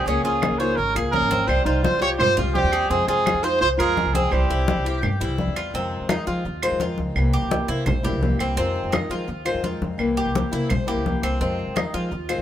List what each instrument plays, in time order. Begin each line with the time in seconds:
0.06 upright bass C#2, steel-string acoustic guitar C#3 F3 A#3 F4 G#4, nylon-string guitar C#4, cuban tres C#4, trumpet G#4, high conga
0.23 upright bass C#2, nylon-string guitar C#4, cuban tres F4, trumpet G#4, high conga
0.42 steel-string acoustic guitar F3 A#3 F4 G#4, high conga, claves
0.51 upright bass C#2
0.59 steel-string acoustic guitar F3 A#3 F4 G#4, nylon-string guitar D#4, trumpet C5, cuban tres C#5, high conga
0.76 upright bass G#1, nylon-string guitar C#4, trumpet A#4, muted steel-string acoustic guitar stroke, high conga
0.95 upright bass C#2, steel-string acoustic guitar F3 A#3 F4 G#4, cuban tres G#4, high conga, claves
1.12 steel-string acoustic guitar A#3 F4 G#4, nylon-string guitar C#4, trumpet A#4, high conga
1.21 upright bass G#1
1.31 cuban tres C4, high conga
1.47 upright bass C2, steel-string acoustic guitar C3 F3 G3 C4 F4, nylon-string guitar F4, trumpet C5, high conga, claves
1.65 upright bass C2, nylon-string guitar D#4, cuban tres F4, trumpet C5, high conga
1.83 steel-string acoustic guitar F3 G3 C4 F4, nylon-string guitar F4, trumpet C5, high conga
1.93 upright bass C2
2.01 steel-string acoustic guitar F3 G3 C4 F4, nylon-string guitar F4, cuban tres G4, trumpet C#5, high conga
2.19 upright bass G2, nylon-string guitar F4, trumpet C5, muted steel-string acoustic guitar stroke, high conga, low conga, claves
2.37 upright bass C2, steel-string acoustic guitar F3 G3 C4 F4, cuban tres F4, high conga, low conga
2.54 steel-string acoustic guitar F3 G3 C4 F4, nylon-string guitar C4, trumpet G4, high conga
2.64 upright bass D#2
2.72 cuban tres G#4, high conga, claves
2.90 upright bass F2, steel-string acoustic guitar C3 F3 G#3 C4 F4, nylon-string guitar C4, cuban tres C4, trumpet G#4, high conga
3.08 upright bass F2, nylon-string guitar C4, cuban tres F4, trumpet G#4, high conga
3.25 steel-string acoustic guitar F3 G#3 C4 F4, high conga, claves
3.34 upright bass F2
3.43 steel-string acoustic guitar F3 G#3 C4 F4, nylon-string guitar D#4, cuban tres C5, trumpet C5, high conga
3.61 upright bass C2, nylon-string guitar F4, trumpet C5, muted steel-string acoustic guitar stroke, high conga
3.77 upright bass F2, steel-string acoustic guitar F3 G#3 C4 F4, nylon-string guitar F4, cuban tres G#4, trumpet A#4, high conga, claves
3.96 steel-string acoustic guitar F3 G#3 C4 F4, high conga
4.06 upright bass C2
4.13 nylon-string guitar C4, cuban tres C4, trumpet G#4, high conga
4.31 upright bass C2, steel-string acoustic guitar C3 E3 G3 C4 E4, nylon-string guitar C4, trumpet G4, high conga, claves
4.50 upright bass C2, cuban tres E4, high conga
4.67 steel-string acoustic guitar E3 G3 C4 E4, high conga
4.77 upright bass C2
4.84 steel-string acoustic guitar E3 G3 C4 E4, cuban tres G4, high conga
5.02 upright bass G2, muted steel-string acoustic guitar stroke, high conga, low conga, claves
5.20 upright bass C2, steel-string acoustic guitar E3 G3 C4 E4, cuban tres E4, high conga
5.38 steel-string acoustic guitar E3 G3 C4 E4, high conga
5.48 upright bass E2
5.56 cuban tres F4, high conga, claves
5.74 upright bass F2, steel-string acoustic guitar C3 D#3 G#3 C4 F4, cuban tres C4, high conga
5.92 high conga
6.01 upright bass F2
6.09 steel-string acoustic guitar D#3 G#3 C4 F4, cuban tres D#4, high conga, claves
6.27 steel-string acoustic guitar D#3 G#3 C4 F4, upright bass F3, cuban tres F4, high conga
6.45 upright bass D#2, muted steel-string acoustic guitar stroke, high conga
6.62 steel-string acoustic guitar D#3 G#3 C4 F4, cuban tres C5, high conga, claves
6.71 upright bass F2
6.80 steel-string acoustic guitar D#3 G#3 C4 F4, cuban tres F4, high conga
6.98 upright bass C#2, high conga
7.16 upright bass C2, steel-string acoustic guitar C3 E3 A#3 C4 E4, high conga, claves
7.33 cuban tres G4, high conga
7.42 upright bass C2
7.51 steel-string acoustic guitar E3 A#3 C4 E4, high conga
7.68 upright bass C3, steel-string acoustic guitar E3 A#3 C4 E4, cuban tres E4, high conga
7.86 upright bass A#1, cuban tres C5, muted steel-string acoustic guitar stroke, high conga, low conga, claves
8.03 steel-string acoustic guitar E3 A#3 C4 E4, cuban tres G4, high conga, low conga
8.13 upright bass C2
8.21 steel-string acoustic guitar E3 A#3 C4 E4, high conga
8.39 upright bass C2, cuban tres C4, high conga, claves
8.57 upright bass F2, steel-string acoustic guitar C3 D#3 G#3 C4 F4, cuban tres C4, high conga
8.75 high conga
8.83 upright bass F2
8.92 steel-string acoustic guitar D#3 G#3 C4 F4, cuban tres D#4, high conga, claves
9.10 steel-string acoustic guitar D#3 G#3 C4 F4, upright bass F3, cuban tres F4, high conga
9.27 upright bass D#2, muted steel-string acoustic guitar stroke, high conga
9.45 steel-string acoustic guitar D#3 G#3 C4 F4, cuban tres C5, high conga, claves
9.54 upright bass F2
9.62 steel-string acoustic guitar D#3 G#3 C4 F4, cuban tres F4, high conga
9.82 upright bass F2, high conga
9.98 upright bass C2, steel-string acoustic guitar C3 E3 A#3 C4 E4, high conga, claves
10.17 cuban tres G4, high conga
10.26 upright bass C2
10.34 steel-string acoustic guitar E3 A#3 C4 E4, high conga
10.52 upright bass C3, steel-string acoustic guitar E3 A#3 C4 E4, cuban tres E4, high conga
10.70 upright bass A#1, cuban tres C5, muted steel-string acoustic guitar stroke, high conga, low conga, claves
10.87 steel-string acoustic guitar E3 A#3 C4 E4, cuban tres G4, high conga
10.97 upright bass C2
11.05 steel-string acoustic guitar E3 A#3 C4 E4, high conga
11.23 upright bass C2, cuban tres C4, high conga, claves
11.40 upright bass F2, steel-string acoustic guitar C3 D#3 G#3 C4 F4, cuban tres C4, high conga
11.59 high conga
11.67 upright bass F2
11.76 steel-string acoustic guitar D#3 G#3 C4 F4, cuban tres D#4, high conga, claves
11.94 steel-string acoustic guitar D#3 G#3 C4 F4, upright bass F3, cuban tres F4, high conga
12.11 upright bass D#2, muted steel-string acoustic guitar stroke, high conga
12.29 steel-string acoustic guitar D#3 G#3 C4 F4, cuban tres C5, high conga, claves
12.38 upright bass F2